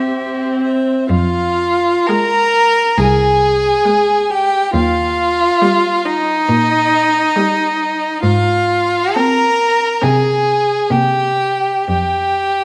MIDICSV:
0, 0, Header, 1, 5, 480
1, 0, Start_track
1, 0, Key_signature, -4, "minor"
1, 0, Tempo, 978793
1, 532, Time_signature, 4, 2, 24, 8
1, 1021, Tempo, 877193
1, 4381, Tempo, 937500
1, 4861, Tempo, 873362
1, 5821, Tempo, 990099
1, 6661, End_track
2, 0, Start_track
2, 0, Title_t, "Violin"
2, 0, Program_c, 0, 40
2, 0, Note_on_c, 0, 76, 37
2, 292, Note_off_c, 0, 76, 0
2, 305, Note_on_c, 0, 76, 39
2, 532, Note_off_c, 0, 76, 0
2, 540, Note_on_c, 0, 77, 66
2, 1035, Note_on_c, 0, 82, 78
2, 1043, Note_off_c, 0, 77, 0
2, 1523, Note_on_c, 0, 80, 69
2, 1531, Note_off_c, 0, 82, 0
2, 2238, Note_on_c, 0, 79, 75
2, 2246, Note_off_c, 0, 80, 0
2, 2476, Note_off_c, 0, 79, 0
2, 2481, Note_on_c, 0, 77, 81
2, 3191, Note_on_c, 0, 75, 76
2, 3199, Note_off_c, 0, 77, 0
2, 4374, Note_off_c, 0, 75, 0
2, 4377, Note_on_c, 0, 77, 76
2, 4852, Note_on_c, 0, 82, 84
2, 4860, Note_off_c, 0, 77, 0
2, 5334, Note_on_c, 0, 80, 65
2, 5343, Note_off_c, 0, 82, 0
2, 5818, Note_on_c, 0, 79, 57
2, 5826, Note_off_c, 0, 80, 0
2, 6286, Note_off_c, 0, 79, 0
2, 6289, Note_on_c, 0, 79, 59
2, 6661, Note_off_c, 0, 79, 0
2, 6661, End_track
3, 0, Start_track
3, 0, Title_t, "Violin"
3, 0, Program_c, 1, 40
3, 0, Note_on_c, 1, 72, 37
3, 289, Note_off_c, 1, 72, 0
3, 299, Note_on_c, 1, 72, 42
3, 529, Note_off_c, 1, 72, 0
3, 535, Note_on_c, 1, 65, 82
3, 1014, Note_on_c, 1, 70, 102
3, 1022, Note_off_c, 1, 65, 0
3, 1511, Note_on_c, 1, 68, 85
3, 1519, Note_off_c, 1, 70, 0
3, 2233, Note_on_c, 1, 67, 81
3, 2242, Note_off_c, 1, 68, 0
3, 2470, Note_off_c, 1, 67, 0
3, 2473, Note_on_c, 1, 65, 103
3, 3192, Note_on_c, 1, 63, 99
3, 3201, Note_off_c, 1, 65, 0
3, 4381, Note_off_c, 1, 63, 0
3, 4384, Note_on_c, 1, 65, 92
3, 4860, Note_on_c, 1, 70, 94
3, 4868, Note_off_c, 1, 65, 0
3, 5338, Note_on_c, 1, 68, 78
3, 5347, Note_off_c, 1, 70, 0
3, 5824, Note_on_c, 1, 67, 73
3, 5831, Note_off_c, 1, 68, 0
3, 6293, Note_off_c, 1, 67, 0
3, 6301, Note_on_c, 1, 67, 76
3, 6661, Note_off_c, 1, 67, 0
3, 6661, End_track
4, 0, Start_track
4, 0, Title_t, "Viola"
4, 0, Program_c, 2, 41
4, 64, Note_on_c, 2, 60, 45
4, 478, Note_off_c, 2, 60, 0
4, 1025, Note_on_c, 2, 56, 60
4, 1395, Note_off_c, 2, 56, 0
4, 1991, Note_on_c, 2, 56, 62
4, 2356, Note_off_c, 2, 56, 0
4, 2957, Note_on_c, 2, 55, 67
4, 3314, Note_off_c, 2, 55, 0
4, 3911, Note_on_c, 2, 55, 65
4, 4265, Note_off_c, 2, 55, 0
4, 4863, Note_on_c, 2, 60, 64
4, 5219, Note_off_c, 2, 60, 0
4, 5332, Note_on_c, 2, 60, 60
4, 5697, Note_off_c, 2, 60, 0
4, 5821, Note_on_c, 2, 58, 50
4, 6174, Note_off_c, 2, 58, 0
4, 6661, End_track
5, 0, Start_track
5, 0, Title_t, "Cello"
5, 0, Program_c, 3, 42
5, 0, Note_on_c, 3, 67, 46
5, 301, Note_off_c, 3, 67, 0
5, 538, Note_on_c, 3, 41, 70
5, 934, Note_off_c, 3, 41, 0
5, 1514, Note_on_c, 3, 36, 72
5, 1895, Note_off_c, 3, 36, 0
5, 2474, Note_on_c, 3, 39, 78
5, 2856, Note_off_c, 3, 39, 0
5, 3432, Note_on_c, 3, 46, 76
5, 3816, Note_off_c, 3, 46, 0
5, 4387, Note_on_c, 3, 44, 72
5, 4773, Note_off_c, 3, 44, 0
5, 5340, Note_on_c, 3, 48, 69
5, 5726, Note_off_c, 3, 48, 0
5, 5821, Note_on_c, 3, 48, 61
5, 6199, Note_off_c, 3, 48, 0
5, 6295, Note_on_c, 3, 41, 52
5, 6661, Note_off_c, 3, 41, 0
5, 6661, End_track
0, 0, End_of_file